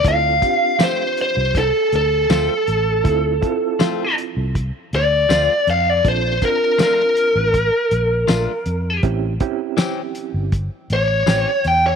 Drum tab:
HH |xxxxxxxx|xxxxxxxx|xxxxxxxx|xxxxxxxx|
TB |--x---x-|--x---x-|--x---x-|--x---x-|
SD |--o---o-|--o---o-|--o---o-|--o---o-|
BD |oo--o---|oo--o---|oo--o---|oo--o---|